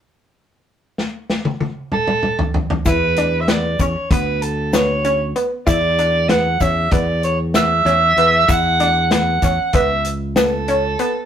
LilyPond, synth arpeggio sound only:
\new Staff \with { instrumentName = "Synth arpeggio sound" } { \time 9/8 \key d \major \tempo 4. = 64 r1 r8 | e'8 d'8 b8 cis'8 b4 b8 cis'8 b8 | e'8 d'8 b8 cis'8 b4 b8 cis'8 b8 | e'8 d'8 b8 cis'8 b4 b8 cis'8 b8 | }